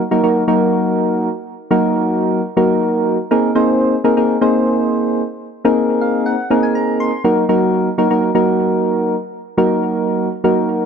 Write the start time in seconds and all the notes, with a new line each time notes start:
0.11 F#3 A#3 D#4 F#4 A#4
0.23 F#3 A#3 D#4 F#4 A#4
0.48 F#3 A#3 D#4 F#4 A#4
1.71 F#3 A#3 D#4 F#4 A#4
2.57 F#3 A#3 D#4 F#4 A#4
3.31 A#3 C4 D#4 G#4 A#4
3.55 A#3 C4 D#4 G#4 C5
4.04 A#3 C4 D#4 G#4 A#4
4.17 A#3 C4 D#4 G#4 A#4
4.41 A#3 C4 D#4 G#4 C5
5.65 A#3 C4 D#4 G#4 A#4
6.01 F5
6.26 F#5
6.50 A#3 C4 D#4 G#4 A#4
6.63 G#5
6.75 A#5
7.00 C6
7.24 F#3 A#3 D#4 F#4 A#4
7.49 F#3 A#3 D#4 F#4 A#4
7.98 F#3 A#3 D#4 F#4 A#4
8.10 F#3 A#3 D#4 F#4 A#4
8.35 F#3 A#3 D#4 F#4 A#4
9.57 F#3 A#3 D#4 F#4 A#4
10.44 F#3 A#3 D#4 F#4 A#4